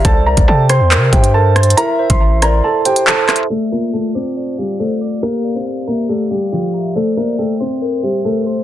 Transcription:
<<
  \new Staff \with { instrumentName = "Tine electric piano" } { \time 4/4 \key d \minor \tempo 4 = 139 c''8 e''8 g''8 c'''8 c''8 e''8 c''8 c'''8 | e'8 c''8 e''8 c'''8 a'8 c''8 a'8 c'''8 | r8 f'8 a''8 d'''8 d''8 f''8 d''8 d'''8 | g'8 d''8 f''8 bes''8 g'8 d''8 g'8 bes''8 |
c''8 e''8 g''8 c'''8 c''8 e''8 c''8 c'''8 | }
  \new Staff \with { instrumentName = "Soft synth lead" } { \time 4/4 \key d \minor d''4. c''8 bes'8 c''8 bes'8 c''8 | e''4. d''4 c''4 e''8 | r4. d''8 c''8 r8 c''8 d''8 | f''4. e''8 d''8 f''8 g''8 e''8 |
d''4. c''8 bes'8 c''8 bes'8 c''8 | }
  \new Staff \with { instrumentName = "Grand piano" } { \time 4/4 \key d \minor <a' a''>8 <bes' bes''>8 <a' a''>8 <c'' c'''>4 <g' g''>8 <a' a''>4 | <bes' bes''>8. <c'' c'''>8. <bes' bes''>8 <a' a''>8 <g' g''>8 <a' a''>4 | <a a'>8 <bes bes'>8 <a a'>8 <c' c''>4 <g g'>8 <a a'>4 | <bes bes'>8. <c' c''>8. <bes bes'>8 <a a'>8 <g g'>8 <f f'>4 |
<a a'>8 <bes bes'>8 <a a'>8 <c' c''>4 <g g'>8 <a a'>4 | }
  \new Staff \with { instrumentName = "808-style bass" } { \clef bass \time 4/4 \key d \minor c,8. c,16 c8. e,16. c16. g,4. | r8. a,,4~ a,,16 r2 | r1 | r1 |
r1 | }
  \new DrumStaff \with { instrumentName = "Drums" } \drummode { \time 4/4 <hh bd>8. <hh bd>16 r8 <hh ss>8 hc8 <hh bd>16 hh16 \tuplet 3/2 { r16 r16 r16 <hh ss>16 hh16 hh16 } | hh8. <hh bd>16 r8 <hh ss>8 r8 hh16 hh16 \tuplet 3/2 { hc16 r16 r16 <hc hh ss>16 hh16 hh16 } | r4 r4 r4 r4 | r4 r4 r4 r4 |
r4 r4 r4 r4 | }
>>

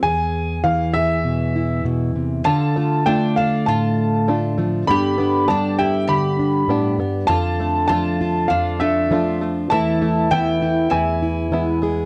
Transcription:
<<
  \new Staff \with { instrumentName = "Upright piano" } { \time 4/4 \key d \dorian \tempo 4 = 99 gis''4 f''8 e''4. r4 | a''4 g''8 f''8 a''4. r8 | b''4 a''8 g''8 b''4. r8 | a''4 a''4 f''8 e''4 r8 |
a''4 g''4 gis''4. r8 | }
  \new Staff \with { instrumentName = "Mandolin" } { \time 4/4 \key d \dorian r1 | f'4 d'8 d'8 f'4. r8 | g'4 d'8 e'8 g'4. r8 | f'4 f'4 d'8 a4 r8 |
e'4 e'4 e'4. r8 | }
  \new Staff \with { instrumentName = "Five-string banjo" } { \time 4/4 \key d \dorian r1 | d8 a8 <a d' f'>4 f'4 <a d' f'>8 a8 | d8 b8 <b d' g'>4 g'4 <b d' g'>8 b8 | d8 a8 <a d' f'>4 f'4 <a d' f'>8 a8 |
e8 a8 <a b e'>4 e4 <gis b e'>8 gis8 | }
  \new Staff \with { instrumentName = "Steel-string acoustic guitar" } { \time 4/4 \key d \dorian << { gis'4. gis'4 e'4. | a'8 f'4 a'2~ a'8 | <g b d' g'>8 d'4 g'4 d'4. | f'8 d'4 f'4 d'8 f'4 |
<e a e'>8 e'4 e'8 gis'8 e'4 gis'8 | } \\ { e,4 e4 b,4 b,8 c8 | d4 a4 a,4. f8 | g,4 g4 d4 a,8 g,8 | f,4 f4 f,4 f4 |
e,4 e4 e,4 e4 | } >> }
>>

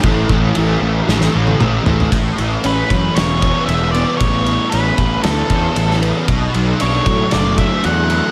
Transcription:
<<
  \new Staff \with { instrumentName = "Lead electric guitar" } { \time 4/4 \key a \major \tempo 4 = 116 r1 | r4 b'4 cis''4 e''8 d''8 | cis''4 b'4 a'4. r8 | r4 cis''4 d''8 e''8 fis''4 | }
  \new Staff \with { instrumentName = "Distorted electric guitar" } { \clef bass \time 4/4 \key a \major <a, e a>8 <e a>8 <a, e a>8 <e a>8 <a, e a>8 <e a>8 <a, e a>8 <e a>8 | a,8 e8 cis'8 e8 b8 cis'8 e8 b8 | a,8 e8 cis'8 e8 b8 cis'8 e8 b8 | b,8 fis8 d'8 fis8 a8 d'8 fis8 a8 | }
  \new Staff \with { instrumentName = "Fingered electric bass" } { \clef bass \time 4/4 \key a \major a,,8 a,,8 a,,8 a,,8 a,,8 a,,8 a,,8 a,,8 | a,,8 a,,8 a,,8 fis,8 e,,4 e,,4 | a,,4 a,,8 a,,8 d,8 e,8 a,,4 | b,,8 b,,8 b,,8 a,8 fis,,4 e,4 | }
  \new DrumStaff \with { instrumentName = "Drums" } \drummode { \time 4/4 <cymc bd>8 bd8 cymc4 sn16 sn8 tommh16 toml8 tomfh16 tomfh16 | <bd cymr>8 cymr8 cymr8 <bd cymr>8 <cymr sn>8 <bd cymr>8 cymr8 cymr8 | <bd cymr>8 cymr8 cymr8 <bd cymr>8 <cymr sn>8 <bd cymr>8 cymr16 sn16 cymr8 | <bd cymr>8 cymr8 cymr8 <bd cymr>8 <cymr sn>8 <bd cymr>8 cymr8 cymr8 | }
>>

